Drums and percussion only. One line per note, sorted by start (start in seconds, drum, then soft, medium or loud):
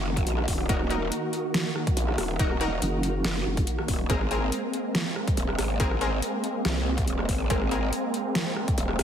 0.17 kick loud
0.17 closed hi-hat medium
0.27 closed hi-hat medium
0.38 cross-stick medium
0.48 kick medium
0.48 open hi-hat medium
0.69 kick loud
0.69 closed hi-hat medium
0.81 cross-stick medium
0.90 closed hi-hat medium
1.12 closed hi-hat medium
1.33 closed hi-hat medium
1.54 snare loud
1.54 closed hi-hat medium
1.76 cross-stick medium
1.87 kick loud
1.87 closed hi-hat medium
1.97 closed hi-hat medium
2.08 cross-stick medium
2.18 cross-stick medium
2.18 open hi-hat medium
2.39 kick loud
2.39 closed hi-hat medium
2.51 cross-stick medium
2.61 closed hi-hat medium
2.82 closed hi-hat medium
3.03 closed hi-hat medium
3.25 cross-stick medium
3.25 snare loud
3.25 closed hi-hat medium
3.57 kick loud
3.57 closed hi-hat medium
3.67 closed hi-hat medium
3.79 cross-stick medium
3.88 kick medium
3.88 open hi-hat medium
4.10 kick loud
4.10 closed hi-hat medium
4.21 cross-stick medium
4.31 closed hi-hat medium
4.52 closed hi-hat medium
4.74 closed hi-hat soft
4.95 snare loud
4.95 closed hi-hat medium
5.16 cross-stick medium
5.28 kick loud
5.28 closed hi-hat medium
5.37 closed hi-hat medium
5.49 cross-stick medium
5.59 cross-stick medium
5.59 open hi-hat medium
5.80 kick loud
5.80 closed hi-hat medium
5.91 cross-stick medium
6.01 closed hi-hat medium
6.22 closed hi-hat medium
6.44 closed hi-hat medium
6.65 cross-stick medium
6.65 snare loud
6.65 closed hi-hat medium
6.98 kick loud
6.98 closed hi-hat soft
7.08 closed hi-hat medium
7.19 cross-stick medium
7.29 kick medium
7.29 open hi-hat medium
7.50 kick loud
7.50 closed hi-hat medium
7.62 cross-stick medium
7.71 closed hi-hat medium
7.93 closed hi-hat medium
8.14 closed hi-hat medium
8.35 snare loud
8.35 closed hi-hat medium
8.56 cross-stick medium
8.68 kick loud
8.68 closed hi-hat medium
8.78 closed hi-hat medium
8.89 cross-stick medium
8.99 cross-stick medium
8.99 open hi-hat medium